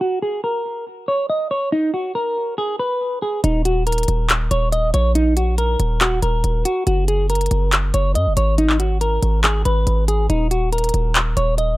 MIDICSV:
0, 0, Header, 1, 4, 480
1, 0, Start_track
1, 0, Key_signature, -6, "minor"
1, 0, Tempo, 428571
1, 11, Time_signature, 4, 2, 24, 8
1, 13182, End_track
2, 0, Start_track
2, 0, Title_t, "Clean electric guitar"
2, 0, Program_c, 0, 27
2, 11, Note_on_c, 0, 66, 86
2, 206, Note_off_c, 0, 66, 0
2, 251, Note_on_c, 0, 68, 83
2, 447, Note_off_c, 0, 68, 0
2, 490, Note_on_c, 0, 70, 64
2, 942, Note_off_c, 0, 70, 0
2, 1211, Note_on_c, 0, 73, 81
2, 1406, Note_off_c, 0, 73, 0
2, 1451, Note_on_c, 0, 75, 76
2, 1646, Note_off_c, 0, 75, 0
2, 1690, Note_on_c, 0, 73, 76
2, 1886, Note_off_c, 0, 73, 0
2, 1931, Note_on_c, 0, 63, 107
2, 2126, Note_off_c, 0, 63, 0
2, 2169, Note_on_c, 0, 66, 78
2, 2365, Note_off_c, 0, 66, 0
2, 2409, Note_on_c, 0, 70, 85
2, 2861, Note_off_c, 0, 70, 0
2, 2890, Note_on_c, 0, 68, 87
2, 3086, Note_off_c, 0, 68, 0
2, 3130, Note_on_c, 0, 71, 80
2, 3582, Note_off_c, 0, 71, 0
2, 3610, Note_on_c, 0, 68, 81
2, 3806, Note_off_c, 0, 68, 0
2, 3850, Note_on_c, 0, 63, 85
2, 4046, Note_off_c, 0, 63, 0
2, 4091, Note_on_c, 0, 66, 77
2, 4287, Note_off_c, 0, 66, 0
2, 4331, Note_on_c, 0, 70, 70
2, 4783, Note_off_c, 0, 70, 0
2, 5051, Note_on_c, 0, 73, 77
2, 5247, Note_off_c, 0, 73, 0
2, 5291, Note_on_c, 0, 75, 80
2, 5486, Note_off_c, 0, 75, 0
2, 5532, Note_on_c, 0, 73, 76
2, 5727, Note_off_c, 0, 73, 0
2, 5771, Note_on_c, 0, 63, 110
2, 5967, Note_off_c, 0, 63, 0
2, 6011, Note_on_c, 0, 66, 78
2, 6206, Note_off_c, 0, 66, 0
2, 6251, Note_on_c, 0, 70, 87
2, 6703, Note_off_c, 0, 70, 0
2, 6732, Note_on_c, 0, 66, 92
2, 6927, Note_off_c, 0, 66, 0
2, 6971, Note_on_c, 0, 70, 70
2, 7423, Note_off_c, 0, 70, 0
2, 7451, Note_on_c, 0, 66, 87
2, 7647, Note_off_c, 0, 66, 0
2, 7691, Note_on_c, 0, 66, 88
2, 7887, Note_off_c, 0, 66, 0
2, 7932, Note_on_c, 0, 68, 80
2, 8127, Note_off_c, 0, 68, 0
2, 8173, Note_on_c, 0, 70, 68
2, 8624, Note_off_c, 0, 70, 0
2, 8893, Note_on_c, 0, 73, 84
2, 9088, Note_off_c, 0, 73, 0
2, 9131, Note_on_c, 0, 75, 77
2, 9326, Note_off_c, 0, 75, 0
2, 9373, Note_on_c, 0, 73, 78
2, 9567, Note_off_c, 0, 73, 0
2, 9613, Note_on_c, 0, 63, 113
2, 9807, Note_off_c, 0, 63, 0
2, 9851, Note_on_c, 0, 66, 80
2, 10046, Note_off_c, 0, 66, 0
2, 10092, Note_on_c, 0, 70, 87
2, 10543, Note_off_c, 0, 70, 0
2, 10572, Note_on_c, 0, 68, 89
2, 10767, Note_off_c, 0, 68, 0
2, 10811, Note_on_c, 0, 71, 79
2, 11263, Note_off_c, 0, 71, 0
2, 11292, Note_on_c, 0, 68, 83
2, 11487, Note_off_c, 0, 68, 0
2, 11532, Note_on_c, 0, 63, 86
2, 11727, Note_off_c, 0, 63, 0
2, 11772, Note_on_c, 0, 66, 76
2, 11967, Note_off_c, 0, 66, 0
2, 12012, Note_on_c, 0, 70, 71
2, 12463, Note_off_c, 0, 70, 0
2, 12732, Note_on_c, 0, 73, 77
2, 12927, Note_off_c, 0, 73, 0
2, 12972, Note_on_c, 0, 75, 81
2, 13167, Note_off_c, 0, 75, 0
2, 13182, End_track
3, 0, Start_track
3, 0, Title_t, "808-style bass"
3, 0, Program_c, 1, 38
3, 3851, Note_on_c, 1, 27, 112
3, 4543, Note_off_c, 1, 27, 0
3, 4572, Note_on_c, 1, 27, 106
3, 5033, Note_off_c, 1, 27, 0
3, 5052, Note_on_c, 1, 27, 103
3, 5513, Note_off_c, 1, 27, 0
3, 5532, Note_on_c, 1, 34, 109
3, 6453, Note_off_c, 1, 34, 0
3, 6492, Note_on_c, 1, 27, 107
3, 6952, Note_off_c, 1, 27, 0
3, 6972, Note_on_c, 1, 27, 105
3, 7202, Note_off_c, 1, 27, 0
3, 7212, Note_on_c, 1, 27, 104
3, 7442, Note_off_c, 1, 27, 0
3, 7691, Note_on_c, 1, 30, 111
3, 8383, Note_off_c, 1, 30, 0
3, 8412, Note_on_c, 1, 30, 104
3, 8873, Note_off_c, 1, 30, 0
3, 8892, Note_on_c, 1, 30, 109
3, 9132, Note_on_c, 1, 42, 100
3, 9149, Note_off_c, 1, 30, 0
3, 9260, Note_on_c, 1, 30, 99
3, 9277, Note_off_c, 1, 42, 0
3, 9367, Note_off_c, 1, 30, 0
3, 9372, Note_on_c, 1, 32, 107
3, 10293, Note_off_c, 1, 32, 0
3, 10332, Note_on_c, 1, 32, 103
3, 10793, Note_off_c, 1, 32, 0
3, 10812, Note_on_c, 1, 32, 105
3, 11042, Note_off_c, 1, 32, 0
3, 11052, Note_on_c, 1, 32, 109
3, 11512, Note_off_c, 1, 32, 0
3, 11532, Note_on_c, 1, 27, 112
3, 12223, Note_off_c, 1, 27, 0
3, 12252, Note_on_c, 1, 27, 105
3, 12712, Note_off_c, 1, 27, 0
3, 12732, Note_on_c, 1, 27, 106
3, 13182, Note_off_c, 1, 27, 0
3, 13182, End_track
4, 0, Start_track
4, 0, Title_t, "Drums"
4, 3851, Note_on_c, 9, 42, 74
4, 3963, Note_off_c, 9, 42, 0
4, 4091, Note_on_c, 9, 42, 78
4, 4203, Note_off_c, 9, 42, 0
4, 4331, Note_on_c, 9, 42, 65
4, 4395, Note_off_c, 9, 42, 0
4, 4395, Note_on_c, 9, 42, 67
4, 4458, Note_off_c, 9, 42, 0
4, 4458, Note_on_c, 9, 42, 64
4, 4515, Note_off_c, 9, 42, 0
4, 4515, Note_on_c, 9, 42, 64
4, 4571, Note_off_c, 9, 42, 0
4, 4571, Note_on_c, 9, 42, 70
4, 4683, Note_off_c, 9, 42, 0
4, 4811, Note_on_c, 9, 39, 108
4, 4811, Note_on_c, 9, 42, 76
4, 4923, Note_off_c, 9, 39, 0
4, 4923, Note_off_c, 9, 42, 0
4, 5051, Note_on_c, 9, 42, 84
4, 5163, Note_off_c, 9, 42, 0
4, 5292, Note_on_c, 9, 42, 78
4, 5404, Note_off_c, 9, 42, 0
4, 5531, Note_on_c, 9, 42, 88
4, 5643, Note_off_c, 9, 42, 0
4, 5771, Note_on_c, 9, 42, 74
4, 5883, Note_off_c, 9, 42, 0
4, 6011, Note_on_c, 9, 42, 76
4, 6123, Note_off_c, 9, 42, 0
4, 6251, Note_on_c, 9, 42, 75
4, 6363, Note_off_c, 9, 42, 0
4, 6491, Note_on_c, 9, 42, 72
4, 6603, Note_off_c, 9, 42, 0
4, 6731, Note_on_c, 9, 39, 111
4, 6731, Note_on_c, 9, 42, 78
4, 6843, Note_off_c, 9, 39, 0
4, 6843, Note_off_c, 9, 42, 0
4, 6972, Note_on_c, 9, 42, 80
4, 7084, Note_off_c, 9, 42, 0
4, 7211, Note_on_c, 9, 42, 82
4, 7323, Note_off_c, 9, 42, 0
4, 7451, Note_on_c, 9, 42, 96
4, 7563, Note_off_c, 9, 42, 0
4, 7692, Note_on_c, 9, 42, 75
4, 7804, Note_off_c, 9, 42, 0
4, 7932, Note_on_c, 9, 42, 80
4, 8044, Note_off_c, 9, 42, 0
4, 8172, Note_on_c, 9, 42, 65
4, 8235, Note_off_c, 9, 42, 0
4, 8235, Note_on_c, 9, 42, 64
4, 8299, Note_off_c, 9, 42, 0
4, 8299, Note_on_c, 9, 42, 66
4, 8355, Note_off_c, 9, 42, 0
4, 8355, Note_on_c, 9, 42, 66
4, 8411, Note_off_c, 9, 42, 0
4, 8411, Note_on_c, 9, 42, 69
4, 8523, Note_off_c, 9, 42, 0
4, 8651, Note_on_c, 9, 39, 107
4, 8651, Note_on_c, 9, 42, 76
4, 8763, Note_off_c, 9, 39, 0
4, 8763, Note_off_c, 9, 42, 0
4, 8891, Note_on_c, 9, 42, 90
4, 9003, Note_off_c, 9, 42, 0
4, 9132, Note_on_c, 9, 42, 80
4, 9244, Note_off_c, 9, 42, 0
4, 9372, Note_on_c, 9, 42, 88
4, 9484, Note_off_c, 9, 42, 0
4, 9612, Note_on_c, 9, 42, 76
4, 9724, Note_off_c, 9, 42, 0
4, 9739, Note_on_c, 9, 39, 68
4, 9851, Note_off_c, 9, 39, 0
4, 9853, Note_on_c, 9, 42, 75
4, 9965, Note_off_c, 9, 42, 0
4, 10093, Note_on_c, 9, 42, 74
4, 10205, Note_off_c, 9, 42, 0
4, 10332, Note_on_c, 9, 42, 70
4, 10444, Note_off_c, 9, 42, 0
4, 10572, Note_on_c, 9, 39, 111
4, 10572, Note_on_c, 9, 42, 77
4, 10684, Note_off_c, 9, 39, 0
4, 10684, Note_off_c, 9, 42, 0
4, 10812, Note_on_c, 9, 42, 79
4, 10924, Note_off_c, 9, 42, 0
4, 11053, Note_on_c, 9, 42, 77
4, 11165, Note_off_c, 9, 42, 0
4, 11293, Note_on_c, 9, 42, 97
4, 11405, Note_off_c, 9, 42, 0
4, 11533, Note_on_c, 9, 42, 75
4, 11645, Note_off_c, 9, 42, 0
4, 11773, Note_on_c, 9, 42, 78
4, 11885, Note_off_c, 9, 42, 0
4, 12012, Note_on_c, 9, 42, 65
4, 12076, Note_off_c, 9, 42, 0
4, 12076, Note_on_c, 9, 42, 66
4, 12140, Note_off_c, 9, 42, 0
4, 12140, Note_on_c, 9, 42, 66
4, 12195, Note_off_c, 9, 42, 0
4, 12195, Note_on_c, 9, 42, 65
4, 12252, Note_off_c, 9, 42, 0
4, 12252, Note_on_c, 9, 42, 70
4, 12364, Note_off_c, 9, 42, 0
4, 12492, Note_on_c, 9, 39, 107
4, 12492, Note_on_c, 9, 42, 78
4, 12604, Note_off_c, 9, 39, 0
4, 12604, Note_off_c, 9, 42, 0
4, 12732, Note_on_c, 9, 42, 85
4, 12844, Note_off_c, 9, 42, 0
4, 12972, Note_on_c, 9, 42, 77
4, 13084, Note_off_c, 9, 42, 0
4, 13182, End_track
0, 0, End_of_file